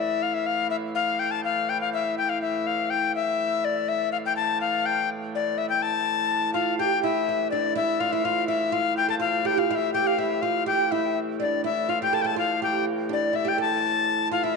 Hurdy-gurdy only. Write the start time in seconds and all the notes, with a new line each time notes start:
Already playing: A2 E3
2.89 A2 E3
6.80 A2 E3
10.69 A2 E3